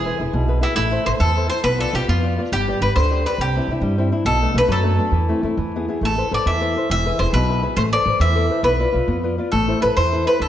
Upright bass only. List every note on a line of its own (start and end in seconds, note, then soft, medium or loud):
0.20 0.24 E1 medium
0.33 0.62 B1 medium
0.77 0.97 A1 medium
1.07 1.11 A1 medium
1.20 1.49 E2 medium
1.64 1.83 B1 medium
1.93 1.98 B1 medium
2.08 2.37 F2 medium
2.52 2.72 G1 medium
2.81 2.86 G1 medium
2.96 3.24 D2 medium
3.38 3.58 C2 medium
3.67 3.72 C2 medium
3.81 4.10 G2 medium
4.25 4.44 B1 medium
4.54 4.59 B1 medium
4.68 4.97 F#2 loud
5.12 5.32 E2 medium
5.43 5.48 E2 medium
5.57 5.86 E2 medium
6.01 6.21 A1 medium
6.32 6.36 A1 medium
6.46 6.74 E2 medium
6.90 7.09 E1 medium
7.19 7.24 E1 medium
7.33 7.61 B1 loud
7.77 7.96 A1 medium
8.06 8.10 A1 medium
8.20 8.48 E2 medium
8.63 8.83 B1 medium
8.94 8.98 B1 medium
9.08 9.36 F2 medium
9.53 9.72 A1 medium
9.83 9.88 A1 medium
9.97 10.25 E2 medium
10.40 10.48 D2 medium